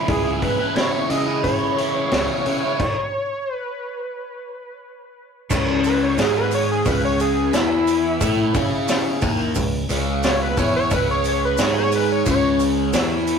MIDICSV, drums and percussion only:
0, 0, Header, 1, 2, 480
1, 0, Start_track
1, 0, Key_signature, 4, "minor"
1, 0, Tempo, 677201
1, 60, Time_signature, 4, 2, 24, 8
1, 9489, End_track
2, 0, Start_track
2, 0, Title_t, "Drums"
2, 56, Note_on_c, 9, 46, 57
2, 59, Note_on_c, 9, 36, 101
2, 127, Note_off_c, 9, 46, 0
2, 130, Note_off_c, 9, 36, 0
2, 298, Note_on_c, 9, 46, 47
2, 300, Note_on_c, 9, 36, 72
2, 369, Note_off_c, 9, 46, 0
2, 371, Note_off_c, 9, 36, 0
2, 538, Note_on_c, 9, 46, 57
2, 544, Note_on_c, 9, 38, 97
2, 609, Note_off_c, 9, 46, 0
2, 614, Note_off_c, 9, 38, 0
2, 779, Note_on_c, 9, 46, 45
2, 850, Note_off_c, 9, 46, 0
2, 1020, Note_on_c, 9, 36, 70
2, 1020, Note_on_c, 9, 46, 55
2, 1091, Note_off_c, 9, 36, 0
2, 1091, Note_off_c, 9, 46, 0
2, 1264, Note_on_c, 9, 46, 44
2, 1335, Note_off_c, 9, 46, 0
2, 1499, Note_on_c, 9, 46, 55
2, 1504, Note_on_c, 9, 38, 97
2, 1570, Note_off_c, 9, 46, 0
2, 1575, Note_off_c, 9, 38, 0
2, 1741, Note_on_c, 9, 46, 44
2, 1812, Note_off_c, 9, 46, 0
2, 1981, Note_on_c, 9, 49, 77
2, 1982, Note_on_c, 9, 36, 96
2, 2052, Note_off_c, 9, 49, 0
2, 2053, Note_off_c, 9, 36, 0
2, 3902, Note_on_c, 9, 70, 94
2, 3903, Note_on_c, 9, 36, 91
2, 3903, Note_on_c, 9, 49, 98
2, 3973, Note_off_c, 9, 70, 0
2, 3974, Note_off_c, 9, 36, 0
2, 3974, Note_off_c, 9, 49, 0
2, 4139, Note_on_c, 9, 70, 73
2, 4145, Note_on_c, 9, 46, 55
2, 4210, Note_off_c, 9, 70, 0
2, 4216, Note_off_c, 9, 46, 0
2, 4379, Note_on_c, 9, 70, 91
2, 4383, Note_on_c, 9, 46, 66
2, 4389, Note_on_c, 9, 38, 97
2, 4450, Note_off_c, 9, 70, 0
2, 4454, Note_off_c, 9, 46, 0
2, 4460, Note_off_c, 9, 38, 0
2, 4617, Note_on_c, 9, 70, 70
2, 4623, Note_on_c, 9, 46, 54
2, 4688, Note_off_c, 9, 70, 0
2, 4694, Note_off_c, 9, 46, 0
2, 4857, Note_on_c, 9, 70, 91
2, 4861, Note_on_c, 9, 36, 97
2, 4863, Note_on_c, 9, 46, 64
2, 4928, Note_off_c, 9, 70, 0
2, 4932, Note_off_c, 9, 36, 0
2, 4934, Note_off_c, 9, 46, 0
2, 5102, Note_on_c, 9, 46, 53
2, 5102, Note_on_c, 9, 70, 74
2, 5173, Note_off_c, 9, 46, 0
2, 5173, Note_off_c, 9, 70, 0
2, 5338, Note_on_c, 9, 46, 61
2, 5341, Note_on_c, 9, 70, 98
2, 5344, Note_on_c, 9, 38, 98
2, 5409, Note_off_c, 9, 46, 0
2, 5411, Note_off_c, 9, 70, 0
2, 5415, Note_off_c, 9, 38, 0
2, 5580, Note_on_c, 9, 46, 51
2, 5580, Note_on_c, 9, 70, 77
2, 5651, Note_off_c, 9, 46, 0
2, 5651, Note_off_c, 9, 70, 0
2, 5819, Note_on_c, 9, 36, 100
2, 5819, Note_on_c, 9, 46, 67
2, 5819, Note_on_c, 9, 70, 98
2, 5890, Note_off_c, 9, 36, 0
2, 5890, Note_off_c, 9, 46, 0
2, 5890, Note_off_c, 9, 70, 0
2, 6057, Note_on_c, 9, 46, 51
2, 6057, Note_on_c, 9, 70, 72
2, 6058, Note_on_c, 9, 36, 96
2, 6128, Note_off_c, 9, 46, 0
2, 6128, Note_off_c, 9, 70, 0
2, 6129, Note_off_c, 9, 36, 0
2, 6296, Note_on_c, 9, 70, 95
2, 6298, Note_on_c, 9, 46, 70
2, 6303, Note_on_c, 9, 38, 98
2, 6367, Note_off_c, 9, 70, 0
2, 6369, Note_off_c, 9, 46, 0
2, 6374, Note_off_c, 9, 38, 0
2, 6531, Note_on_c, 9, 70, 67
2, 6538, Note_on_c, 9, 36, 102
2, 6539, Note_on_c, 9, 46, 55
2, 6602, Note_off_c, 9, 70, 0
2, 6609, Note_off_c, 9, 36, 0
2, 6610, Note_off_c, 9, 46, 0
2, 6769, Note_on_c, 9, 70, 93
2, 6776, Note_on_c, 9, 36, 79
2, 6777, Note_on_c, 9, 46, 72
2, 6840, Note_off_c, 9, 70, 0
2, 6847, Note_off_c, 9, 36, 0
2, 6848, Note_off_c, 9, 46, 0
2, 7013, Note_on_c, 9, 70, 76
2, 7019, Note_on_c, 9, 46, 59
2, 7084, Note_off_c, 9, 70, 0
2, 7090, Note_off_c, 9, 46, 0
2, 7251, Note_on_c, 9, 70, 91
2, 7255, Note_on_c, 9, 46, 70
2, 7261, Note_on_c, 9, 38, 96
2, 7322, Note_off_c, 9, 70, 0
2, 7326, Note_off_c, 9, 46, 0
2, 7331, Note_off_c, 9, 38, 0
2, 7492, Note_on_c, 9, 70, 68
2, 7495, Note_on_c, 9, 36, 99
2, 7496, Note_on_c, 9, 46, 57
2, 7563, Note_off_c, 9, 70, 0
2, 7566, Note_off_c, 9, 36, 0
2, 7566, Note_off_c, 9, 46, 0
2, 7729, Note_on_c, 9, 70, 92
2, 7735, Note_on_c, 9, 36, 99
2, 7736, Note_on_c, 9, 46, 72
2, 7800, Note_off_c, 9, 70, 0
2, 7806, Note_off_c, 9, 36, 0
2, 7807, Note_off_c, 9, 46, 0
2, 7968, Note_on_c, 9, 70, 73
2, 7976, Note_on_c, 9, 46, 57
2, 8039, Note_off_c, 9, 70, 0
2, 8047, Note_off_c, 9, 46, 0
2, 8206, Note_on_c, 9, 70, 96
2, 8210, Note_on_c, 9, 46, 68
2, 8216, Note_on_c, 9, 38, 95
2, 8277, Note_off_c, 9, 70, 0
2, 8281, Note_off_c, 9, 46, 0
2, 8287, Note_off_c, 9, 38, 0
2, 8448, Note_on_c, 9, 70, 69
2, 8452, Note_on_c, 9, 46, 56
2, 8519, Note_off_c, 9, 70, 0
2, 8523, Note_off_c, 9, 46, 0
2, 8688, Note_on_c, 9, 70, 89
2, 8692, Note_on_c, 9, 36, 92
2, 8692, Note_on_c, 9, 46, 69
2, 8759, Note_off_c, 9, 70, 0
2, 8763, Note_off_c, 9, 36, 0
2, 8763, Note_off_c, 9, 46, 0
2, 8926, Note_on_c, 9, 70, 74
2, 8933, Note_on_c, 9, 46, 57
2, 8997, Note_off_c, 9, 70, 0
2, 9004, Note_off_c, 9, 46, 0
2, 9166, Note_on_c, 9, 70, 93
2, 9167, Note_on_c, 9, 46, 67
2, 9173, Note_on_c, 9, 38, 98
2, 9237, Note_off_c, 9, 70, 0
2, 9238, Note_off_c, 9, 46, 0
2, 9244, Note_off_c, 9, 38, 0
2, 9408, Note_on_c, 9, 46, 53
2, 9408, Note_on_c, 9, 70, 71
2, 9478, Note_off_c, 9, 70, 0
2, 9479, Note_off_c, 9, 46, 0
2, 9489, End_track
0, 0, End_of_file